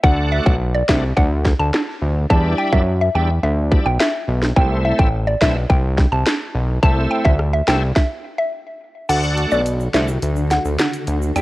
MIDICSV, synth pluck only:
0, 0, Header, 1, 2, 480
1, 0, Start_track
1, 0, Tempo, 566038
1, 31, Time_signature, 4, 2, 24, 8
1, 9681, End_track
2, 0, Start_track
2, 0, Title_t, "Synth pluck"
2, 0, Program_c, 0, 84
2, 30, Note_on_c, 0, 78, 105
2, 121, Note_off_c, 0, 78, 0
2, 272, Note_on_c, 0, 76, 81
2, 362, Note_off_c, 0, 76, 0
2, 389, Note_on_c, 0, 78, 67
2, 480, Note_off_c, 0, 78, 0
2, 632, Note_on_c, 0, 74, 77
2, 722, Note_off_c, 0, 74, 0
2, 753, Note_on_c, 0, 76, 71
2, 843, Note_off_c, 0, 76, 0
2, 989, Note_on_c, 0, 78, 78
2, 1081, Note_off_c, 0, 78, 0
2, 1352, Note_on_c, 0, 81, 76
2, 1442, Note_off_c, 0, 81, 0
2, 1952, Note_on_c, 0, 81, 98
2, 2042, Note_off_c, 0, 81, 0
2, 2190, Note_on_c, 0, 79, 75
2, 2281, Note_off_c, 0, 79, 0
2, 2311, Note_on_c, 0, 76, 77
2, 2402, Note_off_c, 0, 76, 0
2, 2554, Note_on_c, 0, 76, 76
2, 2644, Note_off_c, 0, 76, 0
2, 2672, Note_on_c, 0, 79, 70
2, 2763, Note_off_c, 0, 79, 0
2, 2911, Note_on_c, 0, 76, 83
2, 3001, Note_off_c, 0, 76, 0
2, 3271, Note_on_c, 0, 79, 84
2, 3361, Note_off_c, 0, 79, 0
2, 3392, Note_on_c, 0, 76, 77
2, 3730, Note_off_c, 0, 76, 0
2, 3871, Note_on_c, 0, 79, 98
2, 3962, Note_off_c, 0, 79, 0
2, 4113, Note_on_c, 0, 76, 78
2, 4203, Note_off_c, 0, 76, 0
2, 4231, Note_on_c, 0, 79, 73
2, 4322, Note_off_c, 0, 79, 0
2, 4471, Note_on_c, 0, 74, 73
2, 4562, Note_off_c, 0, 74, 0
2, 4591, Note_on_c, 0, 76, 84
2, 4682, Note_off_c, 0, 76, 0
2, 4831, Note_on_c, 0, 79, 79
2, 4922, Note_off_c, 0, 79, 0
2, 5190, Note_on_c, 0, 81, 78
2, 5281, Note_off_c, 0, 81, 0
2, 5790, Note_on_c, 0, 81, 114
2, 5881, Note_off_c, 0, 81, 0
2, 6028, Note_on_c, 0, 79, 73
2, 6120, Note_off_c, 0, 79, 0
2, 6146, Note_on_c, 0, 76, 81
2, 6239, Note_off_c, 0, 76, 0
2, 6390, Note_on_c, 0, 76, 77
2, 6481, Note_off_c, 0, 76, 0
2, 6511, Note_on_c, 0, 79, 80
2, 6601, Note_off_c, 0, 79, 0
2, 6748, Note_on_c, 0, 76, 81
2, 6840, Note_off_c, 0, 76, 0
2, 7109, Note_on_c, 0, 76, 71
2, 7200, Note_off_c, 0, 76, 0
2, 7708, Note_on_c, 0, 78, 100
2, 7800, Note_off_c, 0, 78, 0
2, 8070, Note_on_c, 0, 74, 79
2, 8161, Note_off_c, 0, 74, 0
2, 8432, Note_on_c, 0, 76, 84
2, 8522, Note_off_c, 0, 76, 0
2, 8911, Note_on_c, 0, 78, 82
2, 9002, Note_off_c, 0, 78, 0
2, 9631, Note_on_c, 0, 79, 108
2, 9681, Note_off_c, 0, 79, 0
2, 9681, End_track
0, 0, End_of_file